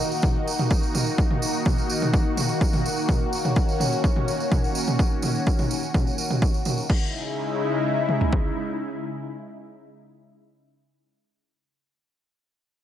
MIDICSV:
0, 0, Header, 1, 3, 480
1, 0, Start_track
1, 0, Tempo, 476190
1, 1191, Time_signature, 4, 2, 24, 8
1, 12940, End_track
2, 0, Start_track
2, 0, Title_t, "Analog synth pad"
2, 0, Program_c, 0, 89
2, 0, Note_on_c, 0, 51, 83
2, 0, Note_on_c, 0, 58, 78
2, 0, Note_on_c, 0, 63, 76
2, 0, Note_on_c, 0, 66, 91
2, 3074, Note_off_c, 0, 63, 0
2, 3111, Note_on_c, 0, 61, 78
2, 6912, Note_off_c, 0, 51, 0
2, 6912, Note_off_c, 0, 58, 0
2, 6912, Note_off_c, 0, 66, 0
2, 6913, Note_off_c, 0, 61, 0
2, 6951, Note_on_c, 0, 49, 85
2, 6951, Note_on_c, 0, 56, 76
2, 6951, Note_on_c, 0, 63, 75
2, 6951, Note_on_c, 0, 64, 89
2, 10435, Note_off_c, 0, 49, 0
2, 10435, Note_off_c, 0, 63, 0
2, 10436, Note_off_c, 0, 56, 0
2, 10436, Note_off_c, 0, 64, 0
2, 12940, End_track
3, 0, Start_track
3, 0, Title_t, "Drums"
3, 117, Note_on_c, 9, 54, 40
3, 218, Note_off_c, 9, 54, 0
3, 225, Note_on_c, 9, 54, 49
3, 232, Note_on_c, 9, 36, 113
3, 232, Note_on_c, 9, 45, 84
3, 326, Note_off_c, 9, 54, 0
3, 333, Note_off_c, 9, 36, 0
3, 333, Note_off_c, 9, 45, 0
3, 478, Note_on_c, 9, 54, 84
3, 579, Note_off_c, 9, 54, 0
3, 596, Note_on_c, 9, 54, 39
3, 597, Note_on_c, 9, 45, 84
3, 697, Note_off_c, 9, 45, 0
3, 697, Note_off_c, 9, 54, 0
3, 711, Note_on_c, 9, 54, 50
3, 712, Note_on_c, 9, 36, 113
3, 812, Note_off_c, 9, 54, 0
3, 813, Note_off_c, 9, 36, 0
3, 837, Note_on_c, 9, 54, 36
3, 938, Note_off_c, 9, 54, 0
3, 952, Note_on_c, 9, 45, 88
3, 955, Note_on_c, 9, 54, 86
3, 1053, Note_off_c, 9, 45, 0
3, 1055, Note_off_c, 9, 54, 0
3, 1076, Note_on_c, 9, 54, 41
3, 1177, Note_off_c, 9, 54, 0
3, 1192, Note_on_c, 9, 36, 111
3, 1192, Note_on_c, 9, 54, 45
3, 1293, Note_off_c, 9, 36, 0
3, 1293, Note_off_c, 9, 54, 0
3, 1316, Note_on_c, 9, 45, 85
3, 1417, Note_off_c, 9, 45, 0
3, 1433, Note_on_c, 9, 54, 93
3, 1534, Note_off_c, 9, 54, 0
3, 1556, Note_on_c, 9, 54, 35
3, 1656, Note_off_c, 9, 54, 0
3, 1667, Note_on_c, 9, 54, 50
3, 1672, Note_on_c, 9, 36, 107
3, 1672, Note_on_c, 9, 45, 89
3, 1767, Note_off_c, 9, 54, 0
3, 1773, Note_off_c, 9, 36, 0
3, 1773, Note_off_c, 9, 45, 0
3, 1797, Note_on_c, 9, 54, 36
3, 1897, Note_off_c, 9, 54, 0
3, 1911, Note_on_c, 9, 54, 80
3, 2012, Note_off_c, 9, 54, 0
3, 2036, Note_on_c, 9, 45, 87
3, 2038, Note_on_c, 9, 54, 35
3, 2137, Note_off_c, 9, 45, 0
3, 2139, Note_off_c, 9, 54, 0
3, 2152, Note_on_c, 9, 36, 108
3, 2152, Note_on_c, 9, 54, 51
3, 2252, Note_off_c, 9, 54, 0
3, 2253, Note_off_c, 9, 36, 0
3, 2392, Note_on_c, 9, 45, 88
3, 2393, Note_on_c, 9, 54, 87
3, 2493, Note_off_c, 9, 45, 0
3, 2493, Note_off_c, 9, 54, 0
3, 2512, Note_on_c, 9, 54, 33
3, 2612, Note_off_c, 9, 54, 0
3, 2632, Note_on_c, 9, 36, 109
3, 2636, Note_on_c, 9, 54, 53
3, 2733, Note_off_c, 9, 36, 0
3, 2737, Note_off_c, 9, 54, 0
3, 2753, Note_on_c, 9, 54, 35
3, 2756, Note_on_c, 9, 45, 87
3, 2854, Note_off_c, 9, 54, 0
3, 2857, Note_off_c, 9, 45, 0
3, 2878, Note_on_c, 9, 54, 80
3, 2979, Note_off_c, 9, 54, 0
3, 2989, Note_on_c, 9, 54, 39
3, 3090, Note_off_c, 9, 54, 0
3, 3111, Note_on_c, 9, 54, 52
3, 3112, Note_on_c, 9, 36, 111
3, 3112, Note_on_c, 9, 45, 92
3, 3212, Note_off_c, 9, 54, 0
3, 3213, Note_off_c, 9, 36, 0
3, 3213, Note_off_c, 9, 45, 0
3, 3353, Note_on_c, 9, 54, 82
3, 3454, Note_off_c, 9, 54, 0
3, 3476, Note_on_c, 9, 45, 90
3, 3478, Note_on_c, 9, 54, 37
3, 3577, Note_off_c, 9, 45, 0
3, 3578, Note_off_c, 9, 54, 0
3, 3587, Note_on_c, 9, 54, 44
3, 3592, Note_on_c, 9, 36, 106
3, 3687, Note_off_c, 9, 54, 0
3, 3693, Note_off_c, 9, 36, 0
3, 3716, Note_on_c, 9, 54, 34
3, 3816, Note_off_c, 9, 54, 0
3, 3832, Note_on_c, 9, 45, 89
3, 3838, Note_on_c, 9, 54, 80
3, 3933, Note_off_c, 9, 45, 0
3, 3938, Note_off_c, 9, 54, 0
3, 3958, Note_on_c, 9, 54, 39
3, 4059, Note_off_c, 9, 54, 0
3, 4072, Note_on_c, 9, 36, 110
3, 4075, Note_on_c, 9, 54, 44
3, 4173, Note_off_c, 9, 36, 0
3, 4176, Note_off_c, 9, 54, 0
3, 4195, Note_on_c, 9, 45, 88
3, 4296, Note_off_c, 9, 45, 0
3, 4314, Note_on_c, 9, 54, 85
3, 4415, Note_off_c, 9, 54, 0
3, 4438, Note_on_c, 9, 54, 38
3, 4539, Note_off_c, 9, 54, 0
3, 4550, Note_on_c, 9, 54, 46
3, 4552, Note_on_c, 9, 36, 106
3, 4552, Note_on_c, 9, 45, 90
3, 4651, Note_off_c, 9, 54, 0
3, 4652, Note_off_c, 9, 45, 0
3, 4653, Note_off_c, 9, 36, 0
3, 4678, Note_on_c, 9, 54, 36
3, 4779, Note_off_c, 9, 54, 0
3, 4788, Note_on_c, 9, 54, 87
3, 4889, Note_off_c, 9, 54, 0
3, 4912, Note_on_c, 9, 54, 37
3, 4916, Note_on_c, 9, 45, 89
3, 5013, Note_off_c, 9, 54, 0
3, 5017, Note_off_c, 9, 45, 0
3, 5032, Note_on_c, 9, 36, 108
3, 5035, Note_on_c, 9, 54, 49
3, 5132, Note_off_c, 9, 36, 0
3, 5136, Note_off_c, 9, 54, 0
3, 5266, Note_on_c, 9, 54, 87
3, 5272, Note_on_c, 9, 45, 90
3, 5366, Note_off_c, 9, 54, 0
3, 5372, Note_off_c, 9, 45, 0
3, 5398, Note_on_c, 9, 54, 35
3, 5499, Note_off_c, 9, 54, 0
3, 5508, Note_on_c, 9, 54, 47
3, 5512, Note_on_c, 9, 36, 104
3, 5608, Note_off_c, 9, 54, 0
3, 5612, Note_off_c, 9, 36, 0
3, 5632, Note_on_c, 9, 54, 31
3, 5635, Note_on_c, 9, 45, 91
3, 5733, Note_off_c, 9, 54, 0
3, 5736, Note_off_c, 9, 45, 0
3, 5752, Note_on_c, 9, 54, 88
3, 5853, Note_off_c, 9, 54, 0
3, 5876, Note_on_c, 9, 54, 33
3, 5977, Note_off_c, 9, 54, 0
3, 5992, Note_on_c, 9, 36, 107
3, 5992, Note_on_c, 9, 45, 92
3, 5992, Note_on_c, 9, 54, 51
3, 6092, Note_off_c, 9, 36, 0
3, 6093, Note_off_c, 9, 45, 0
3, 6093, Note_off_c, 9, 54, 0
3, 6117, Note_on_c, 9, 54, 30
3, 6218, Note_off_c, 9, 54, 0
3, 6230, Note_on_c, 9, 54, 75
3, 6331, Note_off_c, 9, 54, 0
3, 6355, Note_on_c, 9, 45, 91
3, 6358, Note_on_c, 9, 54, 35
3, 6456, Note_off_c, 9, 45, 0
3, 6459, Note_off_c, 9, 54, 0
3, 6471, Note_on_c, 9, 36, 106
3, 6474, Note_on_c, 9, 54, 50
3, 6572, Note_off_c, 9, 36, 0
3, 6575, Note_off_c, 9, 54, 0
3, 6594, Note_on_c, 9, 54, 33
3, 6695, Note_off_c, 9, 54, 0
3, 6706, Note_on_c, 9, 54, 77
3, 6712, Note_on_c, 9, 45, 90
3, 6806, Note_off_c, 9, 54, 0
3, 6812, Note_off_c, 9, 45, 0
3, 6831, Note_on_c, 9, 54, 35
3, 6932, Note_off_c, 9, 54, 0
3, 6951, Note_on_c, 9, 36, 104
3, 6951, Note_on_c, 9, 49, 80
3, 7052, Note_off_c, 9, 36, 0
3, 7052, Note_off_c, 9, 49, 0
3, 8152, Note_on_c, 9, 47, 59
3, 8253, Note_off_c, 9, 47, 0
3, 8276, Note_on_c, 9, 43, 71
3, 8377, Note_off_c, 9, 43, 0
3, 8392, Note_on_c, 9, 36, 85
3, 8493, Note_off_c, 9, 36, 0
3, 12940, End_track
0, 0, End_of_file